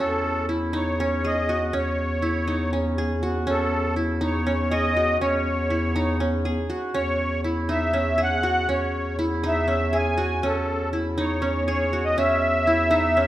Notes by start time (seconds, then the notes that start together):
Already playing: E4 F#4
0.00 E2 C#4 A4
0.49 E4
0.73 D#4 C#5
1.00 C#4
1.25 G#4 D#5
1.49 F#4
1.69 D#5
1.73 E2 C#4
1.78 C#5
2.22 E4
2.48 D#4
2.73 C#4
2.98 G#4
3.23 F#4
3.47 E2 C#4 A4
3.96 E4
4.21 D#4 C#5
4.47 C#4
4.71 G#4 D#5
4.97 F#4
5.20 E2 C#4 C#5
5.70 E4
5.96 D#4
6.20 C#4
6.45 G#4
6.70 F#4
6.94 E2 C#4 C#5
7.44 E4
7.69 D#4 E5
7.93 C#4
8.18 G#4
8.22 F#5
8.43 F#4
8.69 E2 C#4 C#5
9.19 E4
9.44 D#4 E5
9.68 C#4
9.93 G#4 G#5
10.18 F#4
10.43 E2 C#4 A4
10.93 E4
11.18 D#4 C#5
11.42 C#4
11.66 G#4 C#5
11.93 F#4
12.04 D#5
12.17 E2 C#4 E5
12.67 E4
12.91 D#4
13.17 C#4